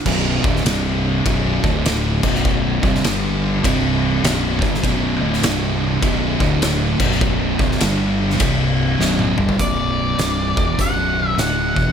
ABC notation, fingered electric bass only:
X:1
M:4/4
L:1/8
Q:"Swing" 1/4=101
K:Bphr
V:1 name="Fingered electric bass" clef=bass
B,,,, D,,, C,,,2 B,,,, D,,,2 B,,,,- | B,,,, C,,, G,,,2 C,,,2 B,,,, G,,, | B,,,, D,,, C,,,2 B,,,, D,,,2 B,,,,- | B,,,, C,,, G,,,2 C,,,2 B,,,, G,,, |
B,,,,2 C,,, E,,, B,,,,2 D,,, E,,, |]